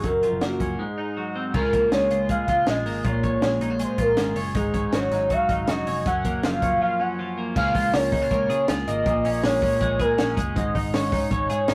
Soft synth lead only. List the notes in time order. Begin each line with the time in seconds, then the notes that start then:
0.04 A#4
0.42 F#4
0.80 G#4
1.55 A#4
1.93 C#5
2.30 F5
2.68 D#5
3.06 C#5
3.44 C#5
3.81 C5
4.01 A#4
4.56 G#4
4.94 C#5
5.32 F5
5.70 D#5
6.07 F#5
6.45 F5
6.82 F5
7.00 F#5
7.56 F5
7.93 C#5
8.31 C#5
8.87 D#5
9.44 C#5
9.81 C#5
10.00 A#4
10.57 D#5
10.94 C#5
11.31 C#5